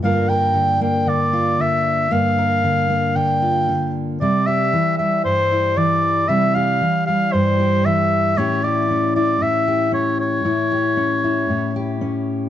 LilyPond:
<<
  \new Staff \with { instrumentName = "Oboe" } { \time 4/4 \key c \mixolydian \tempo 4 = 115 f''8 g''4 g''8 d''4 e''4 | f''2 g''4. r8 | d''8 e''4 e''8 c''4 d''4 | e''8 f''4 f''8 c''4 e''4 |
cis''8 d''4 d''8 e''4 cis''8 cis''8~ | cis''2. r4 | }
  \new Staff \with { instrumentName = "Steel-string acoustic guitar" } { \time 4/4 \key c \mixolydian << { <d bes f' bes'>8 bes'4 bes4 f'4. | bes8 bes'4 bes4 f'4. | g8 g'4 g4 e'4. | g8 g'4 g4 g'4. |
<cis' e' g'>8 g'4 e'4 g'4. | e'8 g'4 e'4 g'4. | } \\ { g,4 d4 d4 d4 | g,4 d4 d4 d4 | c4 e4 g,4 e4 | c4 e4 g,4 e4 |
a,4 cis'4 a,4 cis'4 | a,4 cis'4 a,4 cis'4 | } >> }
>>